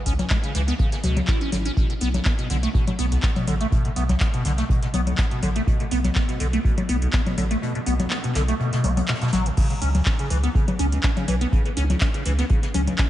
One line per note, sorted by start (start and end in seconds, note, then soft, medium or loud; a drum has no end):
0.06 0.24 C#2 medium
0.06 0.13 C#4 loud
0.06 kick medium
0.06 closed hi-hat medium
0.06 open hi-hat loud
0.19 0.25 C#2 medium
0.19 snare soft
0.19 closed hi-hat medium
0.19 low conga medium
0.30 0.38 G#3 loud
0.30 kick loud
0.30 snare loud
0.30 clap loud
0.30 closed hi-hat medium
0.44 0.53 C#3 medium
0.44 closed hi-hat soft
0.55 0.72 C#2 loud
0.55 0.62 E3 loud
0.55 snare soft
0.55 closed hi-hat medium
0.55 open hi-hat loud
0.68 0.74 B3 medium
0.68 snare medium
0.68 closed hi-hat medium
0.79 0.90 C#3 medium
0.79 kick loud
0.79 closed hi-hat medium
0.92 0.96 C#3 medium
0.92 snare medium
0.92 closed hi-hat medium
1.04 1.21 C#2 loud
1.04 1.18 B2 medium
1.04 closed hi-hat medium
1.04 open hi-hat loud
1.04 low conga medium
1.17 1.20 E3 medium
1.17 closed hi-hat medium
1.17 low conga medium
1.27 1.39 E4 medium
1.27 kick loud
1.27 snare loud
1.27 clap loud
1.27 closed hi-hat medium
1.41 1.51 C#4 medium
1.41 closed hi-hat soft
1.52 1.70 G#1 medium
1.52 1.57 D3 medium
1.52 closed hi-hat medium
1.52 open hi-hat loud
1.52 low conga medium
1.65 1.72 C#4 medium
1.65 closed hi-hat medium
1.77 1.88 B2 medium
1.77 kick loud
1.77 closed hi-hat medium
1.90 1.94 B2 medium
1.90 closed hi-hat soft
2.00 2.19 B1 loud
2.00 2.08 B3 loud
2.00 closed hi-hat medium
2.00 open hi-hat loud
2.14 2.21 B1 medium
2.14 snare soft
2.14 closed hi-hat medium
2.14 low conga medium
2.25 2.33 B3 medium
2.25 kick loud
2.25 snare loud
2.25 clap loud
2.25 closed hi-hat medium
2.39 2.48 B2 medium
2.39 closed hi-hat soft
2.50 2.67 B1 loud
2.50 2.57 D3 loud
2.50 closed hi-hat medium
2.50 open hi-hat loud
2.63 2.69 A3 loud
2.63 closed hi-hat medium
2.74 2.85 B2 medium
2.74 kick loud
2.74 closed hi-hat medium
2.87 2.91 B2 medium
2.87 closed hi-hat medium
2.87 low conga medium
2.99 3.16 B1 loud
2.99 3.06 B3 loud
2.99 closed hi-hat medium
2.99 open hi-hat loud
3.12 3.18 B1 medium
3.12 closed hi-hat soft
3.12 closed hi-hat medium
3.23 3.30 B3 medium
3.23 kick loud
3.23 snare loud
3.23 clap loud
3.23 closed hi-hat medium
3.36 3.46 B2 medium
3.36 closed hi-hat soft
3.36 low conga medium
3.47 3.65 A1 medium
3.47 3.55 D3 loud
3.47 closed hi-hat medium
3.47 open hi-hat loud
3.47 low conga medium
3.61 3.67 A3 loud
3.61 closed hi-hat medium
3.72 3.83 B2 medium
3.72 kick loud
3.72 closed hi-hat medium
3.85 3.89 B2 medium
3.85 closed hi-hat soft
3.96 4.14 B1 loud
3.96 4.04 B3 loud
3.96 closed hi-hat medium
3.96 open hi-hat loud
4.09 4.16 B1 medium
4.09 snare soft
4.09 closed hi-hat medium
4.09 low conga medium
4.20 4.28 B3 medium
4.20 kick loud
4.20 snare loud
4.20 clap loud
4.20 closed hi-hat medium
4.34 4.43 B2 medium
4.34 closed hi-hat soft
4.45 4.63 B1 loud
4.45 4.52 D3 loud
4.45 snare soft
4.45 closed hi-hat medium
4.45 open hi-hat loud
4.58 4.64 A3 medium
4.58 snare medium
4.58 closed hi-hat medium
4.69 4.80 B2 medium
4.69 kick loud
4.69 closed hi-hat medium
4.82 4.86 B2 medium
4.82 snare soft
4.82 closed hi-hat medium
4.94 5.11 B1 loud
4.94 5.01 B3 loud
4.94 closed hi-hat medium
4.94 open hi-hat loud
4.94 low conga medium
5.07 5.13 B1 medium
5.07 closed hi-hat medium
5.07 low conga loud
5.18 5.26 B3 medium
5.18 kick loud
5.18 snare loud
5.18 clap loud
5.18 closed hi-hat medium
5.31 5.41 B2 medium
5.31 closed hi-hat soft
5.43 5.60 A1 medium
5.43 5.50 D3 loud
5.43 closed hi-hat medium
5.43 open hi-hat loud
5.43 low conga loud
5.56 5.62 A3 loud
5.56 closed hi-hat medium
5.67 5.78 B2 medium
5.67 kick loud
5.67 closed hi-hat medium
5.80 5.84 B2 medium
5.80 closed hi-hat soft
5.91 6.09 B1 loud
5.91 5.99 B3 loud
5.91 closed hi-hat medium
5.91 open hi-hat loud
6.04 6.11 B1 medium
6.04 snare soft
6.04 closed hi-hat medium
6.04 low conga medium
6.15 6.23 B3 medium
6.15 kick loud
6.15 snare loud
6.15 clap loud
6.15 closed hi-hat medium
6.29 6.38 B2 medium
6.29 closed hi-hat medium
6.40 6.58 B1 loud
6.40 6.47 D3 loud
6.40 closed hi-hat medium
6.40 open hi-hat loud
6.53 6.59 A3 loud
6.53 closed hi-hat medium
6.65 6.75 B2 medium
6.65 kick loud
6.65 closed hi-hat medium
6.78 6.81 B2 medium
6.78 closed hi-hat medium
6.78 low conga loud
6.89 7.07 B1 medium
6.89 6.96 B3 medium
6.89 closed hi-hat medium
6.89 open hi-hat loud
7.02 7.08 B1 medium
7.02 closed hi-hat medium
7.13 7.21 B3 medium
7.13 kick loud
7.13 snare loud
7.13 clap loud
7.13 closed hi-hat medium
7.26 7.36 B2 medium
7.26 closed hi-hat soft
7.26 closed hi-hat medium
7.26 low conga medium
7.37 7.55 A1 medium
7.37 7.45 D3 loud
7.37 closed hi-hat medium
7.37 open hi-hat loud
7.37 low conga loud
7.51 7.57 A3 loud
7.51 closed hi-hat medium
7.62 7.73 B2 medium
7.62 closed hi-hat medium
7.75 7.79 B2 medium
7.75 closed hi-hat soft
7.86 8.04 B1 loud
7.86 7.94 B3 loud
7.86 closed hi-hat medium
7.86 open hi-hat loud
8.00 8.06 B1 medium
8.00 snare soft
8.00 closed hi-hat medium
8.00 low conga loud
8.10 8.18 B3 medium
8.10 snare loud
8.10 clap loud
8.10 closed hi-hat medium
8.24 8.33 B2 medium
8.24 closed hi-hat medium
8.35 8.53 B1 loud
8.35 8.43 D3 loud
8.35 snare loud
8.35 clap soft
8.35 closed hi-hat medium
8.35 open hi-hat loud
8.48 8.55 A3 loud
8.48 closed hi-hat soft
8.48 closed hi-hat medium
8.60 8.71 B2 medium
8.60 closed hi-hat medium
8.73 8.86 B2 medium
8.73 snare loud
8.73 closed hi-hat medium
8.84 9.02 B1 loud
8.84 8.91 B3 medium
8.84 closed hi-hat soft
8.84 open hi-hat loud
8.84 low conga medium
8.97 9.01 B3 medium
8.97 closed hi-hat medium
8.97 low conga loud
9.08 9.13 B2 medium
9.08 snare loud
9.08 clap loud
9.08 closed hi-hat medium
9.15 snare medium
9.15 closed hi-hat medium
9.21 9.31 B2 medium
9.21 snare loud
9.21 closed hi-hat medium
9.21 closed hi-hat soft
9.28 snare loud
9.28 closed hi-hat medium
9.33 9.50 A1 medium
9.33 9.48 F#3 loud
9.33 snare loud
9.33 closed hi-hat medium
9.33 open hi-hat loud
9.33 low conga medium
9.46 9.50 C#3 medium
9.46 closed hi-hat medium
9.57 9.68 C#3 medium
9.57 kick loud
9.57 closed hi-hat medium
9.57 crash loud
9.70 9.74 C#3 medium
9.70 closed hi-hat soft
9.82 9.99 C#2 loud
9.82 9.89 C#4 loud
9.82 closed hi-hat medium
9.82 open hi-hat loud
9.95 10.01 C#2 medium
9.95 snare soft
9.95 closed hi-hat medium
9.95 low conga medium
10.05 10.13 C#4 medium
10.05 kick loud
10.05 snare loud
10.05 clap loud
10.05 closed hi-hat medium
10.19 10.29 C#3 medium
10.19 closed hi-hat medium
10.30 10.48 C#2 loud
10.30 10.38 E3 loud
10.30 closed hi-hat medium
10.30 open hi-hat loud
10.43 10.50 B3 loud
10.43 closed hi-hat medium
10.55 10.66 C#3 medium
10.55 kick loud
10.55 closed hi-hat medium
10.68 10.72 C#3 medium
10.68 closed hi-hat medium
10.68 low conga medium
10.79 10.97 C#2 loud
10.79 10.86 C#4 loud
10.79 closed hi-hat medium
10.79 open hi-hat loud
10.92 10.99 C#2 medium
10.92 closed hi-hat medium
10.92 closed hi-hat soft
11.03 11.11 C#4 medium
11.03 kick loud
11.03 snare loud
11.03 clap loud
11.03 closed hi-hat medium
11.16 11.26 C#3 medium
11.16 closed hi-hat soft
11.16 low conga medium
11.28 11.46 B1 medium
11.28 11.35 E3 loud
11.28 closed hi-hat medium
11.28 open hi-hat loud
11.28 low conga medium
11.41 11.47 B3 loud
11.41 closed hi-hat medium
11.52 11.63 C#3 medium
11.52 kick loud
11.52 closed hi-hat medium
11.66 11.69 C#3 medium
11.66 closed hi-hat soft
11.77 11.94 C#2 loud
11.77 11.84 C#4 loud
11.77 closed hi-hat medium
11.77 open hi-hat loud
11.90 11.96 C#2 medium
11.90 snare soft
11.90 closed hi-hat medium
11.90 low conga medium
12.01 12.08 C#4 medium
12.01 kick loud
12.01 snare loud
12.01 clap loud
12.01 closed hi-hat medium
12.14 12.24 C#3 medium
12.14 closed hi-hat medium
12.25 12.43 C#2 loud
12.25 12.33 E3 loud
12.25 snare soft
12.25 closed hi-hat medium
12.25 open hi-hat loud
12.39 12.45 B3 medium
12.39 snare medium
12.39 closed hi-hat medium
12.49 12.61 C#3 medium
12.49 kick loud
12.49 closed hi-hat medium
12.63 12.67 C#3 medium
12.63 snare medium
12.63 closed hi-hat medium
12.74 12.92 C#2 loud
12.74 12.82 C#4 loud
12.74 closed hi-hat medium
12.74 open hi-hat loud
12.74 low conga medium
12.87 12.94 C#2 medium
12.87 closed hi-hat medium
12.87 low conga medium
12.98 13.06 C#4 medium
12.98 kick loud
12.98 snare loud
12.98 clap loud
12.98 closed hi-hat medium